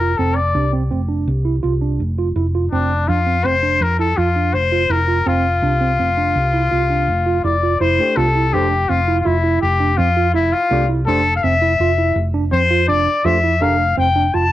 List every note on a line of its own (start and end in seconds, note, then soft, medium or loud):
0.00 0.17 F1 medium
0.00 0.10 F4 medium
0.00 0.19 A#4 medium
0.17 0.53 F1 medium
0.17 0.38 C4 medium
0.17 0.37 A4 medium
0.35 0.72 D5 medium
0.55 0.89 C2 medium
0.55 0.65 D4 medium
0.73 0.82 C4 medium
0.91 1.25 F1 medium
0.91 1.01 C4 medium
1.08 1.28 D4 medium
1.27 1.61 C2 medium
1.45 1.55 E4 medium
1.63 1.98 C2 medium
1.63 1.73 F4 medium
1.82 2.01 D4 medium
2.00 2.34 F1 medium
2.19 2.28 F4 medium
2.36 2.70 F1 medium
2.36 2.46 E4 medium
2.55 2.64 F4 medium
2.72 3.06 F1 medium
2.72 2.92 C4 medium
2.72 3.10 D4 medium
3.08 3.43 F2 medium
3.08 3.18 D4 medium
3.08 3.47 F4 medium
3.27 3.36 C4 medium
3.45 3.79 F1 medium
3.45 3.54 C4 medium
3.45 3.84 C5 medium
3.63 3.82 D4 medium
3.81 4.15 F2 medium
3.81 3.99 A#4 medium
3.99 4.09 E4 medium
3.99 4.19 A4 medium
4.17 4.52 F2 medium
4.17 4.56 F4 medium
4.17 4.27 F4 medium
4.36 4.55 D4 medium
4.54 4.88 F1 medium
4.54 4.93 C5 medium
4.72 4.82 F4 medium
4.89 5.24 F1 medium
4.89 5.00 E4 medium
4.89 5.29 A#4 medium
5.08 5.18 F4 medium
5.26 5.61 F1 medium
5.26 5.45 C4 medium
5.26 7.44 F4 medium
5.62 5.97 C2 medium
5.62 5.73 D4 medium
5.81 5.91 C4 medium
5.99 6.33 F1 medium
5.99 6.09 C4 medium
6.18 6.37 D4 medium
6.36 6.70 C2 medium
6.53 6.63 E4 medium
6.71 7.06 C2 medium
6.71 6.81 F4 medium
6.90 7.09 D4 medium
7.08 7.42 F1 medium
7.26 7.36 F4 medium
7.44 7.78 F1 medium
7.44 7.54 E4 medium
7.44 7.78 D5 medium
7.63 7.73 F4 medium
7.80 7.98 F1 medium
7.80 8.00 E4 medium
7.80 8.18 C5 medium
7.99 8.24 A3 medium
7.99 8.24 D4 medium
7.99 8.25 G4 medium
7.99 8.25 C5 medium
8.17 8.51 C2 medium
8.17 8.27 F4 medium
8.17 8.55 A4 medium
8.35 8.45 E4 medium
8.53 8.88 F1 medium
8.53 8.66 A3 medium
8.53 8.72 D4 medium
8.53 8.66 D4 medium
8.53 8.91 G4 medium
8.53 8.67 G4 medium
8.53 8.67 C5 medium
8.89 9.24 F1 medium
8.89 8.99 C4 medium
8.89 9.20 F4 medium
9.08 9.18 E4 medium
9.20 9.27 F4 medium
9.25 9.60 F1 medium
9.25 9.61 E4 medium
9.25 9.35 F4 medium
9.44 9.63 E4 medium
9.61 9.97 F1 medium
9.61 9.99 G4 medium
9.80 9.90 D4 medium
9.98 10.33 F2 loud
9.98 10.08 C4 medium
9.98 10.34 F4 medium
10.17 10.26 F4 medium
10.34 10.52 F1 medium
10.34 10.54 E4 medium
10.53 10.89 F4 medium
10.71 11.05 C2 medium
10.71 10.84 A3 medium
10.71 10.84 D4 medium
10.71 10.81 F4 medium
10.71 10.84 G4 medium
10.71 10.85 D5 medium
10.89 10.99 E4 medium
11.07 11.41 F1 medium
11.07 11.20 A3 medium
11.07 11.20 D4 medium
11.07 11.27 D4 medium
11.07 11.20 G4 medium
11.07 11.34 A4 medium
11.07 11.21 C5 medium
11.36 11.45 F5 medium
11.43 11.78 F1 medium
11.43 11.53 C4 medium
11.43 12.25 E5 medium
11.62 11.71 E4 medium
11.80 12.14 F1 medium
11.80 11.90 F4 medium
11.98 12.17 E4 medium
12.16 12.50 F1 medium
12.34 12.44 D4 medium
12.52 12.87 F2 medium
12.52 12.62 C4 medium
12.52 12.86 C5 medium
12.71 12.80 F4 medium
12.88 13.06 F1 medium
12.88 13.08 D4 medium
12.88 13.27 D5 loud
13.24 13.59 F2 medium
13.24 13.37 A3 medium
13.24 13.38 D4 medium
13.24 13.35 F4 medium
13.24 13.38 G4 medium
13.24 13.38 C5 medium
13.24 13.64 E5 medium
13.44 13.53 E4 medium
13.60 13.96 F1 medium
13.60 13.74 A3 medium
13.60 13.74 D4 medium
13.60 13.81 D4 medium
13.60 13.74 G4 medium
13.60 13.74 A#4 medium
13.60 13.98 F5 loud
13.97 14.32 F1 medium
13.97 14.07 C4 medium
13.97 14.36 G5 medium
14.16 14.25 D4 medium
14.34 14.52 F1 medium
14.34 14.43 F4 medium
14.34 14.52 A5 loud